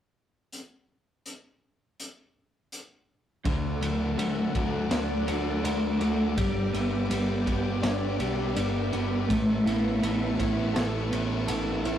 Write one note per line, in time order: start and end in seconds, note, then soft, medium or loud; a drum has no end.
0.53 closed hi-hat soft
1.26 closed hi-hat medium
2.00 closed hi-hat medium
2.72 closed hi-hat medium
3.44 3.80 D2 medium
3.44 5.28 D3 medium
3.44 6.35 A4 medium
3.44 9.25 D5 medium
3.44 6.34 F#5 medium
3.44 9.25 D6 medium
3.44 kick loud
3.44 ride medium
3.81 4.16 D2 medium
3.81 5.64 F#3 medium
3.81 4.53 A3 medium
3.81 ride medium
4.17 4.52 D2 medium
4.17 5.26 F#3 medium
4.17 5.62 A3 medium
4.17 ride medium
4.54 4.89 D2 medium
4.54 5.99 A3 medium
4.54 5.25 F#4 medium
4.54 kick medium
4.54 ride medium
4.89 5.25 D2 medium
4.89 6.36 D4 medium
4.89 5.62 D4 medium
4.89 snare loud
4.89 ride medium
5.27 5.62 D2 medium
5.27 6.37 F#3 medium
5.27 5.99 F#4 medium
5.27 ride medium
5.63 5.99 D2 medium
5.63 6.37 A3 medium
5.63 6.37 D4 medium
5.63 ride medium
6.00 6.35 D2 medium
6.00 6.37 A3 medium
6.00 6.37 F#4 medium
6.00 ride medium
6.36 6.72 G1 medium
6.36 8.19 G3 medium
6.36 7.08 G3 medium
6.36 11.98 B4 medium
6.36 9.26 G5 medium
6.36 kick loud
6.36 ride medium
6.73 7.08 G1 medium
6.73 7.45 B3 medium
6.73 7.09 B3 medium
6.73 ride medium
7.10 7.45 G1 medium
7.10 8.18 G3 medium
7.10 8.55 B3 medium
7.10 ride medium
7.45 7.81 G1 medium
7.45 8.91 B3 medium
7.45 8.17 G4 medium
7.45 kick medium
7.45 ride medium
7.82 8.18 G1 medium
7.82 8.55 D4 medium
7.82 9.29 D4 medium
7.82 snare loud
7.82 ride medium
8.18 8.54 B1 medium
8.18 9.28 G3 medium
8.18 8.91 G4 medium
8.18 ride medium
8.56 8.91 G1 medium
8.56 9.32 B3 medium
8.56 9.29 D4 medium
8.56 ride medium
8.92 9.27 G1 medium
8.92 9.31 B3 medium
8.92 9.29 G4 medium
8.92 ride medium
9.26 9.64 A1 medium
9.26 11.11 A3 medium
9.26 11.98 E5 medium
9.26 11.98 A5 medium
9.26 11.98 C#6 medium
9.30 kick loud
9.30 ride medium
9.64 10.00 A1 medium
9.64 11.48 B3 medium
9.64 10.36 E4 medium
9.64 ride medium
10.01 10.37 A1 medium
10.01 11.10 B3 medium
10.01 11.47 E4 medium
10.01 ride medium
10.38 10.73 A1 medium
10.38 11.83 E4 medium
10.38 11.11 C#5 medium
10.38 kick medium
10.38 ride medium
10.74 11.10 A1 medium
10.74 11.46 A4 medium
10.74 11.98 A4 medium
10.74 snare loud
10.74 ride medium
11.11 11.47 A1 medium
11.11 11.98 B3 medium
11.11 11.84 C#5 medium
11.11 ride medium
11.47 11.83 A1 medium
11.47 11.98 E4 medium
11.47 11.98 A4 medium
11.47 ride loud
11.84 11.98 A1 medium
11.84 11.98 E4 medium
11.84 11.98 C#5 medium
11.84 ride medium